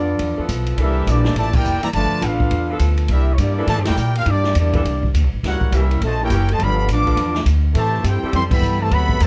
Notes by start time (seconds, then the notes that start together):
Already playing: F2 F3 B3 D4 F4 A4 D5
0.19 E2, kick, ride
0.36 F3 B3 E4 A4, muted upright bass stroke
0.49 B1, kick, hi-hat pedal, ride
0.66 ride
0.77 C2 E3 G3 A#3 D4 E4 A4, kick, ride
0.82 D4 G4 A#4 E5
1.07 A#1 G3 A#3 D4 E4 G4 D5, kick, hi-hat pedal, ride
1.11 A#3
1.25 snare
1.36 A1 A#2 E3 A3 G4 D5 E5 A5, kick, ride
1.53 A#3 E4 G4 A#4 D5 G5, kick, crash
1.64 F1, hi-hat pedal
1.83 E3 G3 A#3 G4 D5 E5 A#5, muted upright bass stroke, ride
1.93 G1 D3 F3 A3 F4 B4 D5 A5, kick, ride
2.12 muted upright bass stroke
2.22 A1 B3 D4 F4 A4 B4 F5, kick, hi-hat pedal, ride
2.40 kick
2.51 E2, kick, ride
2.69 F3 B3 E4 A4
2.79 D2, kick, hi-hat pedal, ride
2.97 ride
3.08 C2 G3 A#3 D4 E4 G4 A#4 E5, kick, ride
3.33 C#5
3.38 G2 G3 A#3 D4 E4 G4 D5, kick, hi-hat pedal, ride
3.58 E3 A#3 D4 A4
3.67 A2 A#2 E3 A3 G4 D5 E5 A5, kick, snare, ride
3.78 G2
3.85 E2 A#3 E4 G4 A#4 D5 G5, snare, ride
3.97 A#2, hi-hat pedal
4.15 D4 F4 G4 A#4 F5, ride
4.26 G2 G3 A#3 D4, kick, ride
4.30 E4 G4 D5
4.44 snare
4.55 E2 G3 A#3 D4 G4 D5, kick, hi-hat pedal, ride
4.59 A#3 E4
4.73 E3 A#3 D4 A4, kick, ride
4.85 C2, kick, ride
5.03 kick
5.14 D2, kick, hi-hat pedal, ride
5.24 C2
5.33 A#1
5.43 C#2 G3 A#3 E4 F#4 A#4 C#5 F#5, kick, snare, ride
5.61 muted upright bass stroke, kick
5.72 C2 E3 G3 A#3 C#4 E4 G4 E5, kick, hi-hat pedal, ride
5.76 C#4 G4 A#4
5.91 ride
6.01 A#1 A3, kick, ride
6.06 F#4 C5 D#5 A5
6.22 A#3 E4 G4 A#4 C#5 G5
6.30 F#1 E3 A#3 C#4 G4, kick, hi-hat pedal, ride
6.49 A3 A5, ride
6.53 F#4 C5 D#5
6.59 G1 D3 F3 B3 B5, kick, ride
6.63 A4 D5 F5
6.88 A1 F3 B3 D4, kick, hi-hat pedal, ride
6.92 B4 F5 A5 D6
7.05 F3 B3 F4 A4, kick, ride
7.17 E2, kick, ride
7.35 snare
7.46 D2, kick, hi-hat pedal, ride
7.74 A2 C3 E3 A3 G4 C5 E5 A5, kick, ride
8.04 G2 C4 E4 G4 A4, kick, hi-hat pedal, ride
8.08 E4 C5 G5
8.23 G3 C4 E4 A4, muted upright bass stroke
8.33 F2 E3 G3 C4 A4 E5 G5 C6, kick, ride
8.50 E3 G3 B3 A4 E5 G5 B5, kick, crash
8.61 G2, hi-hat pedal
8.80 C3 E3 A3 G4 C5 E5 A5
8.91 D2 C3 F#3 B3 A4 E5 F#5 B5, kick, ride
9.09 kick
9.20 E2 C3 F#3 A3 C4 E4 F#4 B4 C5 E5 A5, kick, hi-hat pedal, ride